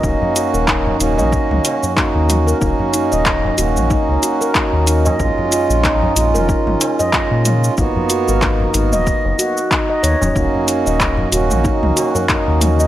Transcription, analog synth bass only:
X:1
M:4/4
L:1/16
Q:"Swing 16ths" 1/4=93
K:Ebm
V:1 name="Analog synth bass" clef=bass
E,,, z2 E,,,2 z E,,, B,,, z D,, z3 E,,2 z | E,,, z2 E,,,2 z E,,, B,,, z D,, z3 E,,2 z | B,,, z2 B,,,2 z B,,, F,,, z A,,, z3 B,,2 z | A,,, z2 A,,,2 z A,,, E,,, z G,,, z4 E,, E,,, |
E,,, z2 E,,,2 z E,,, B,,, z D,, z3 E,,2 z |]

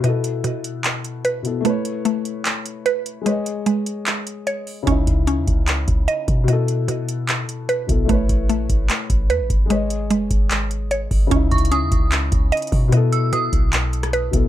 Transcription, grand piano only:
X:1
M:4/4
L:1/8
Q:1/4=149
K:C#m
V:1 name="Grand piano"
[B,,B,EA]6- [B,,B,EA] [B,,B,EA] | [A,EBc]8 | [G,Gcd]8 | [C,CDE]8 |
[B,,B,EA]6- [B,,B,EA] [B,,B,EA] | [A,EBc]8 | [G,Gcd]8 | [C,CDE]8 |
[B,,B,EA]6- [B,,B,EA] [B,,B,EA] |]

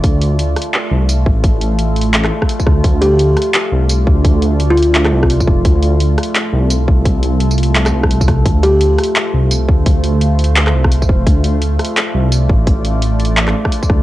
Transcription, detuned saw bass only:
X:1
M:4/4
L:1/8
Q:"Swing 16ths" 1/4=171
K:Dm
V:1 name="Detuned saw bass" clef=bass
D,,3 z2 C,,2 A,,,- | A,,,4- A,,, z2 D,, | D,,3 z2 C,,2 D,,- | D,,4- D,, C,,2 F,,, |
D,,3 z2 C,,2 C,,- | C,,4- C,, C,,3 | D,,3 z2 C,,2 D,,- | D,,4- D,, C,,2 F,,, |
D,,3 z2 C,,2 A,,,- | A,,,4- A,,, z2 D,, |]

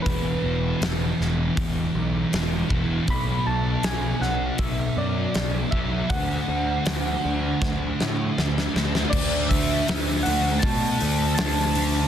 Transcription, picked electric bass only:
X:1
M:4/4
L:1/8
Q:1/4=79
K:Dlyd
V:1 name="Picked electric bass" clef=bass
E,,, E,,, E,,, E,,, E,,, B,,, E,,, E,,, | B,,, B,,, B,,, B,,, B,,, F,, B,,, B,,, | D,, D,, D,, D,, D,, A,, D,, D,, | D,,2 D,, D,, B,, D,, D,,2 |]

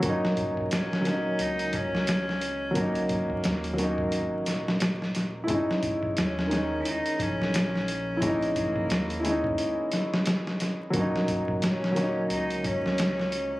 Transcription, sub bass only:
X:1
M:4/4
L:1/8
Q:"Swing 16ths" 1/4=88
K:Ebphr
V:1 name="Sub bass" clef=bass
E,,,4 D,,4- | D,,2 E,,2 A,,, E,,,3 | z2 E,,2 z B,,,3- | B,,,2 E,,2 z4 |
E,,,4 D,,4 |]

